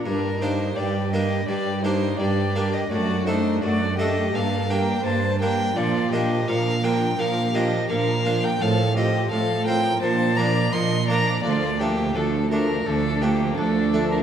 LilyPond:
<<
  \new Staff \with { instrumentName = "Violin" } { \time 4/4 \key g \minor \tempo 4 = 84 bes'8 c''8 d''8 ees''8 d''8 c''8 d''8. ees''16 | d''8 c''8 d''8 ees''8 f''8 g''8 a''8 g''8 | d''8 ees''8 f''8 g''8 f''8 ees''8 f''8. g''16 | f''8 ees''8 f''8 g''8 a''8 bes''8 c'''8 bes''8 |
d''8 g'8 a'8 bes'8 a'8 g'8 a'8. bes'16 | }
  \new Staff \with { instrumentName = "Violin section" } { \time 4/4 \key g \minor d'8 ees'8 g'8 g'8 g'8 ees'8 g'8. g'16 | fis'8 ees'8 fis'8 g'8 a'8 bes'8 c''8 bes'8 | f'8 g'8 bes'8 bes'8 bes'8 g'8 bes'8. bes'16 | a'8 g'8 a'8 bes'8 c''8 d''8 ees''8 d''8 |
f'8 bes8 d'8 d'8 d'8 bes8 d'8. d'16 | }
  \new Staff \with { instrumentName = "Violin section" } { \time 4/4 \key g \minor d'8 d'8 d'8 d'8 d'8 d'8 d'8 d'8 | d'8 d'8 d'8 d'8 d'8 d'8 d'8 d'8 | d'8 d'8 d'8 d'8 d'8 d'8 d'8 d'8 | c'8 c'8 c'8 c'8 d'8 d'8 d'8 d'8 |
a8 a8 a8 a8 a8 a8 a8 a8 | }
  \new Staff \with { instrumentName = "Harpsichord" } { \time 4/4 \key g \minor r8 <bes d' g'>4 <bes d' g'>8 r8 <bes d' g'>4 <bes d' g'>8 | r8 <a d' a'>4 <a d' a'>8 r8 <bes d' g'>4 <bes d' g'>8 | r8 <bes d' f'>4 <bes d' f'>8 r8 <bes d' f'>4 <bes d' f'>8 | r8 <c' f'>4 <c' f'>8 r8 <bes d'>4 <bes d'>8 |
r8 <a d'>4 <a d'>8 r8 <a d'>4 <a d'>8 | }
  \new Staff \with { instrumentName = "Harpsichord" } { \clef bass \time 4/4 \key g \minor g,4 g,4 g,4 g,4 | fis,4 fis,4 g,4 g,4 | bes,4 bes,4 bes,4 bes,4 | a,4 a,4 bes,4 bes,4 |
d,4 d,4 d,4 d,4 | }
  \new Staff \with { instrumentName = "Viola section" } { \clef bass \time 4/4 \key g \minor g8 g8 g8 g8 g8 g8 g8 g8 | a8 a8 a8 a8 bes8 bes8 bes8 bes8 | f8 f8 f8 f8 f8 f8 f8 f8 | f8 f8 f8 f8 f8 f8 f8 f8 |
f8 f8 f8 f8 f8 f8 f8 f8 | }
  \new Staff \with { instrumentName = "Cello section" } { \clef bass \time 4/4 \key g \minor g,4 g,4 g,4 g,4 | fis,4 fis,4 g,4 g,4 | bes,4 bes,4 bes,4 bes,4 | a,4 a,4 bes,4 bes,4 |
d,4 d,4 d,4 d,4 | }
>>